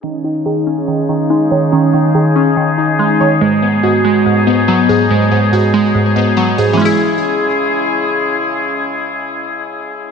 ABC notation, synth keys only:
X:1
M:4/4
L:1/8
Q:1/4=142
K:C#m
V:1 name="Synth keys"
C D G C2 D D c | C D G C2 D D c | G, B, F G,2 B, B, G | G, B, F G,2 B, B, G |
[CEG]8- | [CEG]8 |]